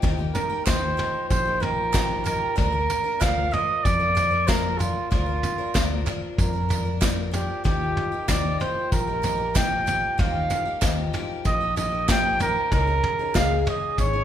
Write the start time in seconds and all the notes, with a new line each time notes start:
0.02 D#2 D#3 F3 A#3 D#4 G4, kick, floor tom, tambourine
0.18 A#3 D#4 G4
0.34 A#4, floor tom, tambourine
0.50 A#3 D#4 G4
0.66 D#2 D#3 F3 A#3 D#4 G4 C5, kick, snare, clap, floor tom, tambourine
0.97 F3 A#3 D#4 G4, floor tom
1.30 A#1 C5, kick, floor tom, tambourine
1.45 A#3 D#4 G4
1.60 F3 A#3 D#4 G4 A#4, floor tom
1.92 D#3 F3 A#3 D#4 G4, kick, snare, clap, floor tom, tambourine
2.24 F3 A#3 D#4 G4 A#4, floor tom, tambourine
2.56 D2 D3 F3 A#3 D4 A#4, kick, floor tom, tambourine
2.72 A#3 D4 A#4
2.90 floor tom, tambourine
3.04 A#3 D4 A#4
3.20 D2 D3 F3 A#3 D4 A#4 F5, kick, snare, clap, floor tom, tambourine
3.51 F3 A#3 A#4 D#5, floor tom
3.84 F2 D5, kick, floor tom, tambourine
3.99 A#3 D4 A#4
4.15 F3 A#3 D4 A#4, floor tom, tambourine
4.31 A#3 D4 A#4
4.47 D3 F3 A#3 D4 A#4, kick, snare, clap, floor tom, tambourine
4.78 F3 A#3 D4 F4 A#4, floor tom, tambourine
5.11 D2 D3 F3 A#3 D4 F4 A#4, kick, floor tom, tambourine
5.26 A#3 D4 A#4
5.43 floor tom, tambourine
5.58 A#3 D4 A#4
5.74 D2 D3 F3 A#3 D4 A#4, kick, snare, clap, floor tom, tambourine
6.06 F3 A#3 D4 A#4, clap, floor tom
6.38 F2 A#4, kick, floor tom, tambourine
6.53 A#3 D4 A#4
6.69 F3 A#3 D4 A#4, floor tom, tambourine
6.85 A#3 D4 A#4
7.00 D3 F3 A#3 D4 A#4, kick, snare, clap, floor tom, tambourine
7.31 F3 A#3 D4 G4 A#4, floor tom, tambourine
7.64 D#2 D#3 F3 A#3 D#4 G4, kick, floor tom, tambourine
7.97 floor tom
8.12 A#3 D#4 G4
8.28 D#2 D#3 F3 A#3 D#4 G4 D5, kick, snare, clap, floor tom, tambourine
8.60 F3 A#3 D#4 G4 C5, floor tom
8.92 A#1 A#4, kick, floor tom, tambourine
9.07 A#3 D#4 G4
9.22 F3 A#3 D#4 G4, floor tom, tambourine
9.38 A#3 D#4 G4
9.54 D#3 F3 A#3 D#4 G4 G5, kick, snare, clap, floor tom, tambourine
9.86 F3 A#3 D#4 G4, floor tom, tambourine
10.18 D#2 D#3 F3 A#3 D#4 G4 F5, kick, floor tom, tambourine
10.50 floor tom, tambourine
10.65 A#3 D#4 G4
10.81 D#2 D#3 F3 A#3 D#4 G4, kick, snare, clap, floor tom, tambourine
11.13 F3 A#3 D#4 G4, floor tom
11.45 A#1 D#5, kick, floor tom, tambourine
11.61 A#3 D#4 G4
11.76 F3 A#3 D#4 G4 D#5, floor tom, tambourine
11.92 A#3 D#4 G4
12.08 D#3 F3 A#3 D#4 G4 G5, kick, snare, clap, floor tom, tambourine
12.39 F3 A#3 D#4 G4 A#4, floor tom, tambourine
12.72 C#2 C#3 G#3 C#4 D#4 G#4 A#4, kick, floor tom, tambourine
12.87 C#4 D#4 G#4
13.03 floor tom
13.19 C#4 D#4 G#4
13.34 C#2 C#3 G#3 C#4 D#4 G#4 F5, kick, snare, clap, floor tom, tambourine
13.59 F5
13.66 G#3 C#4 D#4 G#4 D#5, floor tom
13.98 G#1 C#5, kick, floor tom, tambourine
14.13 C#4 D#4 G#4